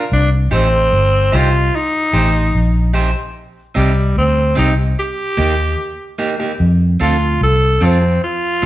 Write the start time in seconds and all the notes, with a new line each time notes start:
0.12 C2 D4
0.51 A1 C4 D#4 G4 C5
0.93 G1
1.32 C2 D#4 F4 G4 C5
1.53 muted clean electric guitar stroke
1.76 D#4
2.13 A1 D#4 G4 C5
2.55 A#1
2.94 D#4 G4 C5
3.75 C2 G3 C4 D#4 G4
4.17 D2 C4
4.56 C2 C4 D#4 G4
5.00 G4
5.37 D#2 A#3 D#4 G4
6.19 A#3 D#4 G4
6.40 A#3 D#4 G4
6.60 F2
7.00 D2 C4 F4 A4
7.41 C2 A4
7.81 F2 C4 F4 A4
8.02 muted clean electric guitar stroke
8.24 F4
8.62 C4